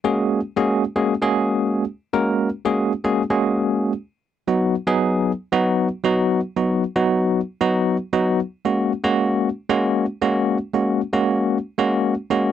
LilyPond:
\new Staff \with { instrumentName = "Tine electric piano" } { \time 4/4 \key b \major \tempo 4 = 115 <gis ais cis' fis' gis'>8. r16 <gis ais cis' fis' gis'>8 r16 <gis ais cis' fis' gis'>16 r16 <gis ais cis' fis' gis'>4~ <gis ais cis' fis' gis'>16 r8 | <gis ais cis' fis' ais'>8. r16 <gis ais cis' fis' gis'>8 r16 <gis ais cis' fis' gis'>16 r16 <gis ais cis' fis' gis'>4~ <gis ais cis' fis' gis'>16 r8 | r8 <fis b dis' fis'>8 r16 <fis b dis' gis'>8. r8 <fis b dis' fis'>8. r16 <fis b dis' fis'>8~ | <fis b dis' fis'>16 r16 <fis b dis' fis'>8 r16 <fis b dis' fis'>8. r8 <fis b dis' fis'>8. r16 <fis b dis' fis'>8 |
r8 <gis ais cis' fis'>8 r16 <gis ais cis' fis'>8. r8 <gis ais cis' fis'>8. r16 <gis ais cis' fis'>8~ | <gis ais cis' fis'>16 r16 <gis ais cis' fis'>8 r16 <gis ais cis' fis'>8. r8 <gis ais cis' fis'>8. r16 <gis ais cis' fis'>8 | }